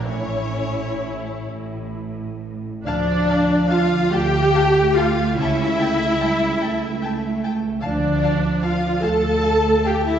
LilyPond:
<<
  \new Staff \with { instrumentName = "Violin section" } { \time 6/8 \key d \minor \tempo 4. = 48 cis'4. r4. | <f'' a''>8 <f'' a''>8 <f'' a''>8 <f'' a''>8 <f'' a''>8 <f'' a''>8 | <g'' a''>8 <g'' a''>8 <g'' a''>8 <g'' a''>8 <g'' a''>8 <g'' a''>8 | <f'' a''>8 <f'' a''>8 <f'' a''>8 <f'' a''>8 <f'' a''>8 <f'' a''>8 | }
  \new Staff \with { instrumentName = "Violin section" } { \time 6/8 \key d \minor cis''4. r4. | d''4 f''8 g''4 f''8 | e''2~ e''8 r8 | d''4 f''8 a''4 g''16 e''16 | }
  \new Staff \with { instrumentName = "Viola section" } { \time 6/8 \key d \minor e'2~ e'16 r8. | d'4 f'8 g'4 f'8 | e'2~ e'8 r8 | d'4 f'8 a'4 g'16 e'16 | }
  \new Staff \with { instrumentName = "Cello section" } { \clef bass \time 6/8 \key d \minor a,4. a,4. | f4. a4. | cis'8 a8 g8 a4. | f4. a4. | }
  \new Staff \with { instrumentName = "Double bass section" } { \clef bass \time 6/8 \key d \minor a,,4. a,,4. | d,4. d,4. | cis,4. cis,4. | d,4. d,4. | }
>>